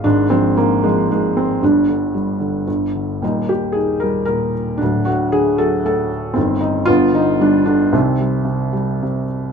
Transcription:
<<
  \new Staff \with { instrumentName = "Felt piano" } { \time 3/4 \key c \minor \tempo 4 = 114 d'8 c'8 bes8 aes8 aes8 c'8 | d'2 r4 | ees'8 g'8 aes'8 bes'8 bes'8 r8 | d'8 fis'8 aes'8 a'8 a'8 r8 |
c'8 ees'8 f'8 ees'8 d'8 d'8 | c'2~ c'8 r8 | }
  \new Staff \with { instrumentName = "Felt piano" } { \clef bass \time 3/4 \key c \minor << { aes4. r4. | g2 r4 | g4. r4. | fis4. r4. |
ees4 b4. r8 | ees2~ ees8 r8 | } \\ { <aes,, aes,>8 f8 aes,8 f8 aes,4 | <g,, g,>8 d8 g8 d8 <g,, g,>8 d8 | <ees,, ees,>8 bes,8 ees8 g8 bes,4 | <d,, d,>8 a,8 d8 fis8 a,4 |
<g,, g,>8 ees8 <g,, g,>8 d8 g8 d8 | <c, c>8 g8 c8 g8 c4 | } >> }
>>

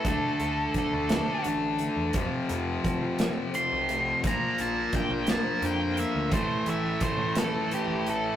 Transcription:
<<
  \new Staff \with { instrumentName = "Lead electric guitar" } { \time 6/8 \key d \major \tempo 4. = 57 a'4 a'4 r4 | r2 c'''4 | bes''8 a''8 g''8 a''8 g''8 e''8 | c''8 e''8 c''8 a'8 g'8 a'8 | }
  \new Staff \with { instrumentName = "Clean electric guitar" } { \time 6/8 \key d \major d8 a8 d'8 a8 d8 a8 | f,8 a8 c'8 a8 f8 a8 | bes,8 bes8 d'8 bes8 d8 bes8 | a,8 a8 cis'8 a8 e8 a8 | }
  \new Staff \with { instrumentName = "Distorted electric guitar" } { \time 6/8 \key d \major r2. | r2. | r2. | <a, e a cis' e'>4. <a, e a cis' e'>4. | }
  \new Staff \with { instrumentName = "Distorted electric guitar" } { \clef bass \time 6/8 \key d \major <d a d'>2. | <f, c f>2. | <bes, f bes>2. | <a, e a>2. | }
  \new Staff \with { instrumentName = "Picked electric bass" } { \clef bass \time 6/8 \key d \major d,16 r16 d,8 r16 d,8 r16 a,,8. e,16 | f,16 r16 f,8 r16 f8 r8 b,,8. | bes,,16 r16 bes,,8 r16 bes,,8 r16 f,8. d,16 | a,,16 r16 a,,8 r16 a,8 r8 a,,8. | }
  \new DrumStaff \with { instrumentName = "Drums" } \drummode { \time 6/8 <hh bd>8 hh8 <hh bd>8 <hh sn>8 hh8 hh8 | <hh bd>8 hh8 <hh bd>8 <hh sn>8 hh8 hh8 | <hh bd>8 hh8 <hh bd>8 <hh sn>8 hh8 hh8 | <hh bd>8 hh8 <hh bd>8 <hh sn>8 hh8 hh8 | }
>>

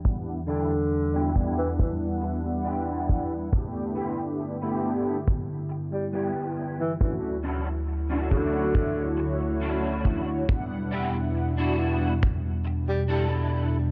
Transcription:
<<
  \new Staff \with { instrumentName = "Clean electric guitar" } { \time 4/4 \key e \dorian \tempo 4 = 69 r8 <d' e' g'>16 r8 <d' e' g'>8. r4 <d' e' g'>8. r16 | r8 <b e' g'>16 r8 <b e' g'>8. r4 <b e' g'>8. r16 | r8 <cis' d' e' fis'>16 r8 <cis' d' e' fis'>8. r4 <cis' d' e' fis'>8. r16 | r8 <d' e' g'>16 r8 <d' e' fis'>8. r4 <d' e' a'>8. r16 | }
  \new Staff \with { instrumentName = "Analog polysynth" } { \time 4/4 \key e \dorian <g b d' e' fis''>8 r8. <g b d' e' fis'>16 <g b d' e' fis''>4~ <g b d' e' fis''>16 <g b d' e' fis''>4~ <g b d' e' fis''>16 | <a b d' e' g'>4~ <a b d' e' g'>16 <a b d' e' g'>16 <a b d' e' g'>8 r2 | <a cis' d' e' fis'>8 r8. <a cis' d' e' fis'>16 <d a e' fis' cis''>2~ <d a e' fis' cis''>8 | <g b d' e' fis''>4~ <g b d' e' fis''>16 <g b d' e' fis'>16 <g b d' e' fis''>8 r2 | }
  \new Staff \with { instrumentName = "Ambient pad" } { \clef bass \time 4/4 \key e \dorian << { d'1 | e'1~ | e'1 | d'1 | } \\ { <e, e g>1 | <g, d b>1 | <d, fis>1 | <e, b, g>1 | } >> }
  \new Staff \with { instrumentName = "Tenor saxophone" } { \clef bass \time 4/4 \key e \dorian r8 d4 r16 e16 e16 r4. r16 | r2 r8. g16 g16 r8 e16 | e16 r4 r16 d4 r4. | r2 r8. g16 g16 r8. | }
  \new DrumStaff \with { instrumentName = "Drums" } \drummode { \time 4/4 bd4 r8 bd8 bd4 r8 bd8 | bd4 r4 bd4 r4 | bd4 r8 bd8 bd4 r8 bd8 | bd4 r4 bd4 r4 | }
>>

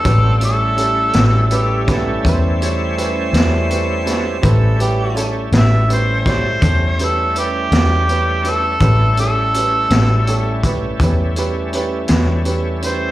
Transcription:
<<
  \new Staff \with { instrumentName = "Harmonica" } { \time 12/8 \key a \mixolydian \tempo 4. = 55 a'8 a'2 r2. r8 | r4. e''8 c''8 c''4 a'8 g'4. a'8~ | a'8 a'2 r2. c''8 | }
  \new Staff \with { instrumentName = "Harmonica" } { \time 12/8 \key a \mixolydian r2 g'8 a'8 c''2. | a'8 g'8. r1 r8. | r1. | }
  \new Staff \with { instrumentName = "Upright piano" } { \time 12/8 \key a \mixolydian <cis' g' b'>8 <cis' g' cis''>8 <cis' g' a'>8 <cis' g' b'>8 <cis' g' b'>8 <cis' g' b'>8 <cis' g' b'>8 <cis' g' cis''>8 <cis' g' b'>8 <cis' g' b'>8 <cis' g' b'>8 <cis' g' b'>8 | <cis' g' b'>8 <cis' g' b'>8 <cis' g' a'>8 <cis' g' b'>8 <cis' g' b'>8 <cis' g' cis''>8 <cis' g' a'>8 <cis' g' b'>8 <cis' g' b'>8 <cis' g' b'>8 <cis' g' b'>8 <cis' g' b'>8 | <cis' g' b'>8 <cis' g' a'>8 <cis' g' b'>8 <cis' g' b'>8 <cis' g' a'>8 <cis' g' b'>8 <cis' g' b'>8 <cis' g' b'>8 <cis' g' b'>8 <cis' g' b'>8 <cis' g' b'>8 <cis' g' b'>8 | }
  \new Staff \with { instrumentName = "Tonewheel organ" } { \time 12/8 \key a \mixolydian <g c' d' f'>8 <g a cis' e'>1~ <g a cis' e'>4. | <g a cis' e'>1. | <g a cis' e'>1. | }
  \new Staff \with { instrumentName = "Fingered electric bass" } { \clef bass \time 12/8 \key a \mixolydian a,,4. a,,4. e,4. e,4. | a,,4. a,,4. e,4. e,4. | a,,4. a,,4. e,4. e,4. | }
  \new DrumStaff \with { instrumentName = "Drums" } \drummode { \time 12/8 <hh bd>8 hh8 hh8 <hh sn>8 hh8 <hh bd sn>8 <hh bd>8 hh8 hh8 <hh sn>8 hh8 <hh sn>8 | <hh bd>8 hh8 hh8 <hh sn>8 hh8 <hh bd sn>8 <hh bd>8 hh8 hh8 <hh sn>8 hh8 hh8 | <hh bd>8 hh8 hh8 <hh sn>8 hh8 <hh bd>8 <hh bd>8 hh8 hh8 <hh sn>8 hh8 hh8 | }
>>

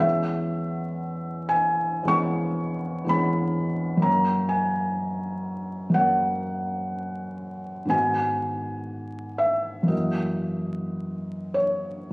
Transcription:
<<
  \new Staff \with { instrumentName = "Felt piano" } { \time 4/4 \key fis \mixolydian \tempo 4 = 61 e''4. gis''8 cis'''4 b''4 | ais''8 gis''4. fis''2 | gis''4. e''8 dis''4. cis''8 | }
  \new Staff \with { instrumentName = "Felt piano" } { \time 4/4 \key fis \mixolydian <e, gis b cis'>2 <e, gis b cis'>4 <e, gis b cis'>4 | <fis, fis ais cis'>2 <fis, fis ais cis'>2 | <gis, dis b fis'>2 <fis, e ais fis'>2 | }
>>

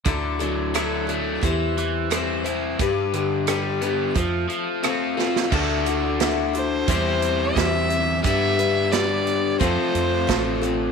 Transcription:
<<
  \new Staff \with { instrumentName = "Fiddle" } { \time 4/4 \key g \major \tempo 4 = 88 r1 | r1 | r4. c''4. e''4 | e''4 d''4 c''4. r8 | }
  \new Staff \with { instrumentName = "Steel-string acoustic guitar" } { \time 4/4 \key g \major <d fis a d' e' a'>8 <a d' e' a'>8 <d fis a d' e' a'>8 <a d' e' a'>8 <g c' e' c''>4 <e g c' e' c''>8 <c' e' c''>8 | <g d' g' b'>8 <d' g' b'>8 <g d' g' b'>8 <d' g' b'>8 <a c' f' a'>4 <f a c' f' a'>8 <c' f' a'>8 | <d a e' fis' a'>8 <e' fis' a'>8 <a e' fis' a'>8 <e' fis' a'>8 <e g c' e' c''>4 <g c' e' c''>8 <c' e' c''>8 | <g d' g' b'>8 <d' g' b'>8 <g d' g' b'>4 <f a c' f' a'>4 <a c' f' a'>8 <c' f' a'>8 | }
  \new Staff \with { instrumentName = "Overdriven electric guitar" } { \time 4/4 \key g \major d8 fis8 fis8 a8 e8 e8 c'8 e'8 | g,8 d8 g8 b8 f8 f8 c'8 f'8 | <d d' fis' a'>2 <e, e g c' g' c''>2 | <g b d' b'>2 <f a c' f' a'>2 | }
  \new Staff \with { instrumentName = "Fingered electric bass" } { \clef bass \time 4/4 \key g \major d,2 e,2 | g,2 f,8 r4. | d,2 e,4 e,4 | g,2 f,16 r16 f,8 a,,4 | }
  \new DrumStaff \with { instrumentName = "Drums" } \drummode { \time 4/4 <hh bd>8 hh8 <hh ss>8 hh8 <hh bd>8 hh8 <hh ss>8 hh8 | <hh bd>8 hh8 <hh ss>8 hh8 <hh bd>8 hh8 <hh ss>8 sn16 sn16 | <cymc bd>8 hh8 <hh sn>8 hh8 <hh bd>8 hh8 <hh bd sn>8 hh8 | <hh bd>8 hh8 <hh sn>8 hh8 <hh bd>8 hh8 <hh bd sn>8 hh8 | }
>>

